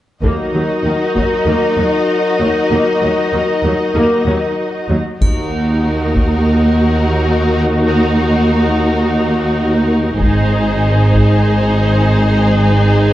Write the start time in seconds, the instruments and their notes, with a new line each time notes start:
0.22 double bass section D#2, cello section D#2, french horn section F#3 A#4, viola section A#3 D#4, violin section F#4 D#5, taiko
0.53 double bass section D#2, cello section D#2, viola section F#3
0.83 double bass section D#2, cello section D#2, viola section D#3
1.15 double bass section D#2, cello section D#2, viola section F#3, taiko
1.46 double bass section D#2, cello section D#2, viola section A#3
1.77 double bass section D#2, cello section D#2, viola section F#3
2.39 double bass section D#2, cello section D#2, viola section F#3
2.69 double bass section D#2, cello section D#2, viola section A#3
3.01 double bass section D#2, cello section D#2, viola section F#3
3.32 double bass section D#2, cello section D#2, viola section D#3
3.63 double bass section D#2, cello section D#2, viola section F#3
3.95 double bass section D#2, cello section D#2, viola section A#3
4.26 double bass section D#2, cello section D#2, viola section F#3
4.89 double bass section D#2, cello section D#2, viola section F#3
5.20 double bass section D#2, cello section D#2, viola section D#4, violin section F#4 A#4, taiko, triangle
6.15 taiko
10.19 double bass section G#1, cello section G#2, viola section D#4, violin section G#4 C5, taiko
11.13 taiko